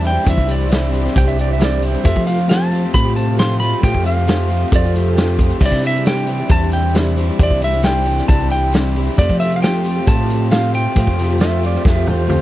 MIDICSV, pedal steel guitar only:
0, 0, Header, 1, 2, 480
1, 0, Start_track
1, 0, Tempo, 445765
1, 281, Time_signature, 4, 2, 24, 8
1, 13368, End_track
2, 0, Start_track
2, 0, Title_t, "Pedal steel guitar"
2, 0, Program_c, 0, 26
2, 1268, Note_on_c, 0, 79, 92
2, 1371, Note_off_c, 0, 79, 0
2, 1377, Note_on_c, 0, 76, 93
2, 1485, Note_off_c, 0, 76, 0
2, 1518, Note_on_c, 0, 74, 77
2, 1616, Note_off_c, 0, 74, 0
2, 1646, Note_on_c, 0, 76, 78
2, 1740, Note_off_c, 0, 76, 0
2, 1771, Note_on_c, 0, 74, 92
2, 1979, Note_off_c, 0, 74, 0
2, 2001, Note_on_c, 0, 72, 100
2, 2214, Note_off_c, 0, 72, 0
2, 5121, Note_on_c, 0, 74, 87
2, 5335, Note_off_c, 0, 74, 0
2, 5352, Note_on_c, 0, 69, 93
2, 5803, Note_off_c, 0, 69, 0
2, 12289, Note_on_c, 0, 76, 110
2, 12518, Note_off_c, 0, 76, 0
2, 12560, Note_on_c, 0, 74, 85
2, 12773, Note_off_c, 0, 74, 0
2, 12782, Note_on_c, 0, 76, 85
2, 13004, Note_off_c, 0, 76, 0
2, 13030, Note_on_c, 0, 72, 96
2, 13368, Note_off_c, 0, 72, 0
2, 13368, End_track
0, 0, End_of_file